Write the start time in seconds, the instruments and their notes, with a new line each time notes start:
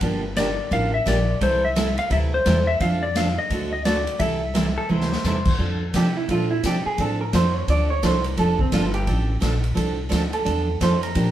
0.01 upright bass G1, steel-string acoustic guitar D3 F3 A#3 D4 G4, kick, ride
0.36 steel-string acoustic guitar D3 F3 A#3 D4 G4, electric slide guitar D5, snare, hi-hat pedal, ride
0.71 upright bass A1, steel-string acoustic guitar D3 F3 A#3 D4 G4, electric slide guitar F5, kick, ride
0.94 electric slide guitar E5
1.06 upright bass A#1, steel-string acoustic guitar D3 F3 A#3 D4 G4, electric slide guitar D5, snare, hi-hat pedal, ride
1.41 upright bass C2, steel-string acoustic guitar C3 E3 G3 C4 E4 A4, electric slide guitar C5, kick, ride
1.65 electric slide guitar E5
1.75 steel-string acoustic guitar C3 E3 G3 C4 E4 A4, snare, hi-hat pedal, ride
1.98 electric slide guitar F5, ride
2.10 upright bass D2, steel-string acoustic guitar C3 E3 G3 C4 E4 A4, electric slide guitar E5, kick, ride
2.34 electric slide guitar C5
2.46 upright bass E2, steel-string acoustic guitar C3 E3 G3 C4 E4 A4, snare, hi-hat pedal, ride
2.67 electric slide guitar E5
2.80 upright bass F2, steel-string acoustic guitar F3 C4 D4 A4, electric slide guitar F5, kick, ride
3.03 electric slide guitar D5
3.16 steel-string acoustic guitar F3 C4 D4 A4, electric slide guitar F5, snare, hi-hat pedal, ride
3.39 electric slide guitar D#5
3.50 upright bass D2, steel-string acoustic guitar D3 A3 C4 F#4 A4, kick, ride
3.73 electric slide guitar D#5
3.85 steel-string acoustic guitar D3 A3 C4 F#4 A4, electric slide guitar D5, snare, hi-hat pedal, ride
4.07 ride
4.19 upright bass C2, steel-string acoustic guitar C3 E3 G3 C4 E4 A4, electric slide guitar E5, kick, ride
4.54 steel-string acoustic guitar C3 E3 G3 C4 E4 A4, snare, hi-hat pedal, ride
4.78 pedal steel guitar A4
4.89 upright bass D2, steel-string acoustic guitar C3 E3 G3 C4 E4 A4, pedal steel guitar C5
5.01 snare
5.13 snare
5.24 upright bass E2, steel-string acoustic guitar C3 E3 G3 C4 E4 A4, pedal steel guitar C5, snare, hi-hat pedal
5.45 kick, crash
5.59 upright bass F2, steel-string acoustic guitar F3 C4 D4 A4, kick
5.94 upright bass C3, steel-string acoustic guitar F3 C4 D4 A4, hollow-body jazz guitar G4, kick, snare, hi-hat pedal, ride
6.17 hollow-body jazz guitar E4
6.29 upright bass A#2, steel-string acoustic guitar F3 C4 D4 A4, hollow-body jazz guitar F4, kick, ride
6.51 hollow-body jazz guitar E4
6.63 upright bass C3, steel-string acoustic guitar F3 C4 D4 A4, hollow-body jazz guitar G4, kick, snare, hi-hat pedal, ride
6.86 hollow-body jazz guitar G#4, muted upright bass stroke
6.98 upright bass A2, steel-string acoustic guitar F3 C4 D4 A4, hollow-body jazz guitar A4, kick, ride
7.21 hollow-body jazz guitar A#4
7.33 upright bass F2, steel-string acoustic guitar F3 C4 D4 A4, hollow-body jazz guitar C5, kick, snare, hi-hat pedal, ride
7.56 hollow-body jazz guitar C#5
7.68 upright bass D2, steel-string acoustic guitar F3 C4 D4 A4, hollow-body jazz guitar D5, kick, ride
7.90 hollow-body jazz guitar C#5
8.02 upright bass C2, steel-string acoustic guitar F3 C4 D4 A4, hollow-body jazz guitar C5, kick, snare, hi-hat pedal, ride
8.24 hollow-body jazz guitar A#4, ride
8.37 upright bass F1, steel-string acoustic guitar F3 C4 D4 A4, hollow-body jazz guitar A4, kick, ride
8.59 hollow-body jazz guitar C4, kick
8.72 upright bass G1, steel-string acoustic guitar F3 C4 D4 A4, hollow-body jazz guitar F4, kick, snare, hi-hat pedal, ride
8.94 hollow-body jazz guitar G4, ride
9.07 upright bass A1, steel-string acoustic guitar F3 C4 D4 A4, kick, ride
9.40 upright bass A#1, steel-string acoustic guitar F3 C4 D4 A4, kick, snare, hi-hat pedal, ride
9.64 ride
9.74 upright bass C2, steel-string acoustic guitar F3 C4 D4 A4, kick, ride
10.09 upright bass D2, steel-string acoustic guitar F3 C4 D4 A4, kick, snare, hi-hat pedal, ride
10.33 hollow-body jazz guitar A4, ride
10.44 upright bass E2, steel-string acoustic guitar F3 C4 D4 A4, kick, ride
10.80 upright bass F2, steel-string acoustic guitar F3 C4 D4 A4, hollow-body jazz guitar C5, kick, snare, hi-hat pedal, ride
11.03 hollow-body jazz guitar A#4, ride
11.15 upright bass A#2, steel-string acoustic guitar D3 F3 A#3 D4 G4, kick, ride